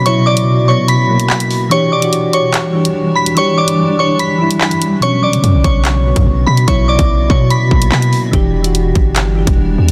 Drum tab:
HH |x--x----x--x-xo-|x--xx-x-x--x---x|x--x----x--x-xx-|x--xx-x-x--x---x|
CP |------------x---|--------x-------|------------x---|--------x-------|
BD |----------------|----------------|----------------|------o----o----|

HH |x--x----x--x-xo-|x--xx-x-x--x---x|
CP |------------x---|--------x-------|
BD |o--o--o---o-----|o-----o----o----|